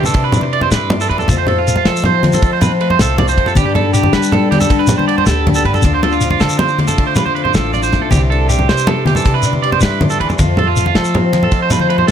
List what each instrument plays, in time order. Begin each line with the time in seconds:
Already playing: upright bass C3, steel-string acoustic guitar E3 G3 D4 E4, tonewheel organ E5 C6 D6
0.04 clean electric guitar A4, low conga, shekere
0.14 upright bass C3, steel-string acoustic guitar C3, kick, ride
0.22 clean electric guitar B4, low conga
0.32 steel-string acoustic guitar D4, ride, low conga, shekere
0.41 muted clean electric guitar stroke, high conga, low conga
0.53 steel-string acoustic guitar G3, clean electric guitar D5, ride
0.61 clean electric guitar C5, low conga
0.71 upright bass G2, steel-string acoustic guitar E4, clean electric guitar B4, snare, ride, shekere
0.90 steel-string acoustic guitar D4, ride, low conga
1.01 clean electric guitar A4, shekere
1.09 upright bass E2, steel-string acoustic guitar E3, clean electric guitar B4, ride
1.18 clean electric guitar A4, low conga, shekere
1.27 steel-string acoustic guitar F2 F3 A3 C4, upright bass F2, tonewheel organ F5 A5, kick, ride, high conga, shekere
1.32 steel-string acoustic guitar F4
1.38 clean electric guitar C5
1.47 steel-string acoustic guitar C4, clean electric guitar A4, ride, low conga
1.58 clean electric guitar F4
1.67 steel-string acoustic guitar A3, ride, shekere
1.76 clean electric guitar F4, low conga
1.85 upright bass F3, steel-string acoustic guitar F4, clean electric guitar A4, snare, ride
1.96 shekere
2.04 steel-string acoustic guitar C4, clean electric guitar C5, ride, low conga
2.23 steel-string acoustic guitar F3, snare, ride, high conga
2.33 clean electric guitar A4, low conga, shekere
2.42 steel-string acoustic guitar F2, upright bass F3, kick, ride, shekere
2.52 clean electric guitar C5, low conga
2.60 steel-string acoustic guitar C4, clean electric guitar B4, ride, low conga, shekere
2.72 low conga
2.81 steel-string acoustic guitar A3, clean electric guitar B4, ride
2.90 clean electric guitar C5, low conga
2.99 upright bass C2, steel-string acoustic guitar F4, clean electric guitar A4, snare, ride, shekere
3.18 steel-string acoustic guitar C4, clean electric guitar D5, ride, high conga, low conga
3.28 clean electric guitar C5, shekere
3.37 upright bass F2, steel-string acoustic guitar F3, kick, ride
3.46 clean electric guitar A4, low conga, shekere
3.55 steel-string acoustic guitar G2 D3 B3 D4 G4, upright bass G2, clean electric guitar G4, tonewheel organ G5 B5, kick, ride, high conga, shekere
3.65 clean electric guitar G4
3.75 steel-string acoustic guitar D4, clean electric guitar A4, ride, low conga
3.93 steel-string acoustic guitar B3, clean electric guitar G4, ride, shekere
4.03 high conga, low conga
4.13 upright bass G3, steel-string acoustic guitar G4, clean electric guitar B4, snare, ride
4.23 shekere
4.32 steel-string acoustic guitar D4, clean electric guitar A4, ride, low conga
4.51 steel-string acoustic guitar D3, clean electric guitar G4, snare, ride, high conga
4.60 clean electric guitar A4, low conga, shekere
4.69 steel-string acoustic guitar G2, upright bass G3, kick, ride, shekere
4.79 clean electric guitar B4, low conga
4.87 steel-string acoustic guitar D4, ride, low conga, shekere
4.98 clean electric guitar C5, high conga, low conga
5.08 steel-string acoustic guitar B3, clean electric guitar D5, ride
5.18 clean electric guitar C5, low conga
5.26 upright bass D2, steel-string acoustic guitar G4, clean electric guitar A4, snare, ride, shekere
5.47 steel-string acoustic guitar D4, ride, high conga, low conga
5.54 clean electric guitar A4, shekere
5.65 upright bass G2, steel-string acoustic guitar D3, clean electric guitar B4, ride
5.74 clean electric guitar A4, low conga, shekere
5.82 upright bass D2, steel-string acoustic guitar D3, tonewheel organ F5 C6 D6, kick, ride, high conga, shekere
5.94 clean electric guitar C5
6.03 steel-string acoustic guitar F4, clean electric guitar A4, ride, low conga
6.12 clean electric guitar F4, shekere
6.21 steel-string acoustic guitar C4, ride, low conga, shekere
6.30 clean electric guitar F4, high conga, low conga
6.39 upright bass D3, steel-string acoustic guitar F4, clean electric guitar A4, snare, ride, shekere
6.49 low conga, shekere
6.59 steel-string acoustic guitar F4, clean electric guitar C5, ride, low conga
6.68 shekere
6.79 steel-string acoustic guitar A3, ride, high conga
6.87 clean electric guitar A4, low conga, shekere
6.98 upright bass D3, steel-string acoustic guitar D3, kick, ride
7.07 clean electric guitar C5
7.16 steel-string acoustic guitar F4, clean electric guitar B4, ride, low conga, shekere
7.26 clean electric guitar C5, high conga, low conga
7.35 steel-string acoustic guitar C4, clean electric guitar B4, ride
7.44 clean electric guitar C5, low conga
7.54 upright bass A1, steel-string acoustic guitar F4, clean electric guitar A4, snare, ride, high conga, shekere
7.74 steel-string acoustic guitar F4, clean electric guitar D5, ride, low conga, shekere
7.83 clean electric guitar C5, shekere
7.93 upright bass B1, steel-string acoustic guitar A3, kick, ride, low conga, shekere
8.02 clean electric guitar A4
8.11 upright bass C2, steel-string acoustic guitar C3 E3 G3 D4, clean electric guitar G4, tonewheel organ E5, kick, ride, high conga, shekere
8.15 steel-string acoustic guitar E4
8.30 steel-string acoustic guitar D4, clean electric guitar A4, ride
8.49 steel-string acoustic guitar G3, clean electric guitar G4, ride, shekere
8.59 high conga, low conga
8.69 upright bass C3, steel-string acoustic guitar E4, clean electric guitar C5, snare, ride
8.78 shekere
8.87 steel-string acoustic guitar D4, clean electric guitar A4, ride, low conga
9.06 steel-string acoustic guitar E3, clean electric guitar G4, snare, ride, high conga
9.15 clean electric guitar A4, low conga, shekere
9.25 steel-string acoustic guitar C3, upright bass C3, kick, ride, shekere
9.34 clean electric guitar B4, low conga
9.43 steel-string acoustic guitar D4, ride, shekere
9.53 high conga, low conga
9.62 steel-string acoustic guitar G3, clean electric guitar D5, ride
9.72 clean electric guitar C5, low conga
9.81 upright bass G2, steel-string acoustic guitar E4, clean electric guitar B4, snare, ride, shekere
10.01 steel-string acoustic guitar D4, ride, high conga, low conga
10.10 clean electric guitar A4, shekere
10.20 upright bass E2, steel-string acoustic guitar E3, clean electric guitar B4, ride
10.29 muted clean electric guitar stroke, low conga, shekere
10.37 steel-string acoustic guitar F2 F3 A3 C4, upright bass F2, tonewheel organ F5 A5 C6, kick, ride, high conga, shekere
10.41 steel-string acoustic guitar F4
10.57 clean electric guitar A4, ride, low conga
10.67 clean electric guitar F4
10.76 steel-string acoustic guitar A3, ride, shekere
10.86 clean electric guitar F4, high conga
10.95 upright bass F3, steel-string acoustic guitar F4, clean electric guitar A4, snare, ride
11.05 shekere
11.14 steel-string acoustic guitar C4, ride, low conga
11.33 steel-string acoustic guitar F3, snare, ride, high conga
11.43 clean electric guitar A4, low conga
11.52 steel-string acoustic guitar F2, upright bass F3, kick, ride, shekere
11.62 clean electric guitar C5, low conga
11.70 steel-string acoustic guitar C4, clean electric guitar B4, ride, low conga, shekere
11.79 clean electric guitar C5, high conga, low conga
11.90 steel-string acoustic guitar A3, clean electric guitar B4, ride
11.98 clean electric guitar C5, low conga
12.07 steel-string acoustic guitar F4, clean electric guitar A4